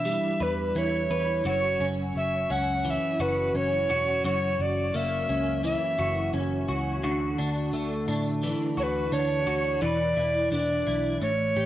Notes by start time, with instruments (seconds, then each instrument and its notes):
Already playing: picked electric bass B2, clean electric guitar E3 D4 E4 B4, recorder E5
0.05 clean electric guitar G3
0.40 picked electric bass E2, clean electric guitar B4, recorder B4
0.75 picked electric bass E2, clean electric guitar E4, recorder C#5
1.10 picked electric bass E2, clean electric guitar B4
1.45 picked electric bass F#1, clean electric guitar F#2 F#4, recorder C#5
1.80 picked electric bass F#1, clean electric guitar C#4
2.15 picked electric bass F#1, recorder E5
2.50 picked electric bass C#2, clean electric guitar C#4, recorder F#5
2.85 clean electric guitar E3, recorder F#5
2.90 recorder E5
3.20 picked electric bass F#1, clean electric guitar F#4, recorder B4
3.54 picked electric bass F#1, clean electric guitar C#4, recorder C#5
3.89 picked electric bass E1, clean electric guitar F#4
4.24 picked electric bass F#1, clean electric guitar F#2 F#4, recorder C#5
4.59 picked electric bass F#1, recorder D5
4.94 picked electric bass F#1, clean electric guitar A#3, recorder E5
5.29 picked electric bass C#2, clean electric guitar C#4
5.64 clean electric guitar E3, recorder E5
5.99 picked electric bass F#1, clean electric guitar F#4
6.34 picked electric bass F#1, clean electric guitar C#4
6.68 picked electric bass C#2, clean electric guitar F#4
7.03 picked electric bass D2, clean electric guitar D3 F#4
7.38 picked electric bass D2, clean electric guitar D4
7.73 picked electric bass D2, clean electric guitar A3
8.08 picked electric bass A2, clean electric guitar D4
8.43 clean electric guitar E3
8.77 picked electric bass D2, clean electric guitar F#4, recorder C#5
8.83 recorder B4
9.12 picked electric bass D2, clean electric guitar D4, recorder C#5
9.47 picked electric bass D2, clean electric guitar F#4
9.82 picked electric bass E1, clean electric guitar E3 B4, recorder D5
10.17 picked electric bass E1, clean electric guitar E4
10.52 picked electric bass E1, clean electric guitar D4, recorder D5
10.87 picked electric bass B1, clean electric guitar E4
11.21 picked electric bass A1, clean electric guitar A2, recorder C#5
11.56 picked electric bass A1, clean electric guitar G4